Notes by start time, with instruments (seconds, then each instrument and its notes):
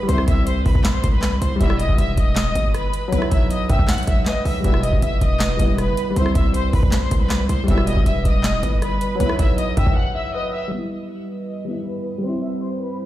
Already playing: grand piano G3 B3 E4
0.03 grand piano G3
0.08 808-style bass C2, grand piano C4, violin section C5 C6, closed hi-hat
0.13 grand piano E4
0.18 cross-stick
0.28 808-style bass C2, violin section E5 E6, kick, closed hi-hat
0.47 violin section C5 C6, closed hi-hat
0.65 808-style bass C2, violin section B4 B5, kick, open hi-hat
0.75 808-style bass C2, kick
0.84 snare, clap, closed hi-hat
0.94 violin section C5 C6
1.04 808-style bass C2, kick, closed hi-hat
1.13 violin section B4 B5
1.22 cross-stick, snare, clap, closed hi-hat
1.41 808-style bass C2, violin section C5 C6, closed hi-hat
1.56 grand piano G3
1.60 808-style bass E1, brass ensemble B2 E3 G3, grand piano B3, violin section E5 E6, kick, closed hi-hat
1.66 grand piano E4, cross-stick
1.80 violin section D#5 D#6, closed hi-hat
1.89 808-style bass E1, kick
1.98 808-style bass E1, violin section E5 E6, closed hi-hat
2.17 808-style bass E1, violin section D#5 D#6, kick, closed hi-hat
2.36 snare, clap, closed hi-hat
2.46 808-style bass D#1
2.55 808-style bass G1, kick, closed hi-hat
2.75 violin section B4 B5, cross-stick, closed hi-hat
2.94 closed hi-hat
3.08 grand piano F#3
3.12 808-style bass B1, grand piano B3, violin section B4 B5, closed hi-hat
3.18 grand piano E4, cross-stick
3.31 808-style bass B1, violin section E5 E6, kick, closed hi-hat
3.51 violin section D#5 D#6, closed hi-hat
3.69 808-style bass F#2, violin section E5 E6, grand piano G5, kick, closed hi-hat
3.79 808-style bass B1, kick
3.88 violin section F#5 F#6, grand piano F#5, snare, clap, closed hi-hat
3.93 closed hi-hat
3.98 closed hi-hat
4.03 closed hi-hat
4.07 808-style bass B1, grand piano E5, violin section E5 E6, kick, closed hi-hat
4.26 grand piano B4, violin section D#5 D#6, snare, clap, closed hi-hat
4.45 808-style bass B1, violin section E5 E6, open hi-hat
4.60 grand piano G3, violin section E5
4.64 808-style bass E1, brass ensemble B2 E3 G3, analog synth pad G3 E4 B4, grand piano B3, violin section E6, kick, closed hi-hat
4.70 grand piano E4, cross-stick
4.83 violin section D#5 D#6, closed hi-hat
4.93 808-style bass E1, kick
5.02 808-style bass G1, violin section E5 E6, closed hi-hat
5.21 808-style bass E1, violin section D#5 D#6, kick, closed hi-hat
5.40 snare, clap, closed hi-hat
5.57 808-style bass E1, grand piano G3 B3, kick, closed hi-hat
5.62 grand piano E4
5.78 violin section B4 B5, cross-stick, closed hi-hat
5.88 808-style bass G1
5.97 closed hi-hat
6.11 grand piano G3
6.16 808-style bass C2, grand piano C4, analog synth pad C5, violin section C5 C6, closed hi-hat
6.21 grand piano E4
6.26 cross-stick
6.35 808-style bass C2, violin section E5 E6, kick, closed hi-hat
6.54 violin section C5 C6, closed hi-hat
6.73 808-style bass C2, violin section B4 B5, kick, open hi-hat
6.83 808-style bass C2, kick
6.92 snare, clap, closed hi-hat
7.02 violin section C5 C6
7.11 808-style bass C2, kick, closed hi-hat
7.21 violin section B4 B5
7.30 cross-stick, snare, clap, closed hi-hat
7.49 808-style bass C2, violin section C5 C6, closed hi-hat
7.64 grand piano G3
7.68 808-style bass E1, brass ensemble B2 E3 G3, analog synth pad G3 E4 B4, grand piano B3, violin section E5 E6, kick, closed hi-hat
7.74 grand piano E4, cross-stick
7.87 violin section D#5 D#6, closed hi-hat
7.97 808-style bass E1, kick
8.06 808-style bass E1, violin section E5 E6, closed hi-hat
8.25 808-style bass E1, violin section D#5 D#6, kick, closed hi-hat
8.44 snare, clap, closed hi-hat
8.54 808-style bass D#1
8.63 808-style bass G1, kick, closed hi-hat
8.82 violin section B4 B5, cross-stick, closed hi-hat
9.01 closed hi-hat
9.15 grand piano F#3
9.20 808-style bass B1, analog synth pad F#3 E4, grand piano B3, violin section B4 B5, closed hi-hat
9.26 grand piano E4, cross-stick
9.39 808-style bass B1, violin section E5 E6, kick, closed hi-hat
9.58 violin section D#5 D#6, closed hi-hat
9.77 808-style bass F#2, violin section E5 E6, grand piano G5, kick, closed hi-hat
9.86 808-style bass B1, kick
9.96 violin section F#5 F#6, grand piano F#5
10.15 grand piano E5, violin section E5 E6
10.34 grand piano B4, violin section D#5 D#6
10.53 violin section E5 E6
10.68 grand piano G3, violin section E5
10.72 analog synth pad G3 E4 B4, violin section E6
10.78 grand piano E4
10.91 violin section D#5 D#6
11.10 violin section E5 E6
11.29 violin section D#5 D#6
11.65 grand piano G3 B3
11.70 grand piano E4
11.86 violin section B4 B5
12.18 grand piano G3
12.23 grand piano C4, analog synth pad C5, violin section C5 C6
12.28 grand piano E4
12.43 violin section E5 E6
12.62 violin section C5 C6
12.80 violin section B4 B5